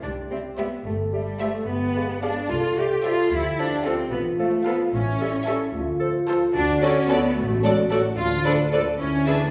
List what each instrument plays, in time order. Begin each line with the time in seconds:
0.02 double bass section C2, cello section D4, french horn section G4
0.31 bassoon G3, cello section C4, clarinet G4, flute E5
0.58 bassoon G3, cello section B3, clarinet G4, viola section G4, violin section C5 E5, flute E5
0.85 double bass section G1, cello section A3, french horn section A4
1.13 bassoon G3, cello section G3, clarinet G4, flute E5
1.40 bassoon G3, cello section A3, clarinet G4, viola section G4, violin section C5 E5, flute E5
1.67 double bass section G1, cello section B3, french horn section G4
1.96 bassoon G#3, clarinet G4, flute F5
2.22 bassoon G#3, cello section D4, clarinet G4, viola section G#4, violin section D5 F5, flute F5
2.49 double bass section C2, cello section F4, french horn section A4
2.77 bassoon G3, clarinet G4, cello section G4, flute E5
3.03 bassoon G3, cello section F4, viola section G4, clarinet G4, violin section C5 E5, flute E5
3.30 double bass section D2, cello section E4, french horn section G4
3.58 bassoon F3, cello section D4, clarinet A4, flute F5
3.84 bassoon F3, cello section C4, viola section F4, violin section A4 F5, clarinet A4, flute F5
4.11 double bass section A1, cello section B3, french horn section F4
4.39 bassoon F3, cello section A3, clarinet A4, flute F5
4.65 bassoon F3, cello section B3, viola section F4, clarinet A4, violin section A4 F5, flute F5
4.92 double bass section A1, cello section C#4, french horn section E4
5.20 bassoon G3, clarinet A4, flute E5
5.46 bassoon G3, viola section G4, clarinet A4, violin section A4 E5, flute E5
5.74 double bass section D2, french horn section F4
6.00 bassoon F3, clarinet A4, flute C5
6.27 bassoon F3, viola section F4, violin section A4 C5, clarinet A4, flute C5
6.54 double bass section D2, cello section D4, french horn section F#4
6.82 bassoon F#3, cello section C#4, viola section F#4, clarinet A4, violin section A4 D5, flute D5
7.09 bassoon F#3, cello section B3, viola section F#4, violin section A4 D5, clarinet A4, flute D5
7.35 double bass section A1, cello section A3, french horn section F#4
7.62 bassoon F#3, cello section G#3, viola section F#4, violin section A4 D5, clarinet A4, flute D5
7.90 bassoon F#3, cello section A3, viola section F#4, violin section A4 D5, clarinet A4, flute D5
8.17 double bass section D2, french horn section D4, cello section F4
8.44 bassoon F3, cello section D4, clarinet A4, viola section A4, violin section B4 D5, flute B4
8.72 bassoon F3, cello section A3, clarinet A4, viola section A4, flute B4, violin section B4 D5
8.99 double bass section D2, cello section C#4, french horn section E4
9.27 bassoon E3, cello section D4, clarinet G#4, viola section G#4, flute B4, violin section B4 E5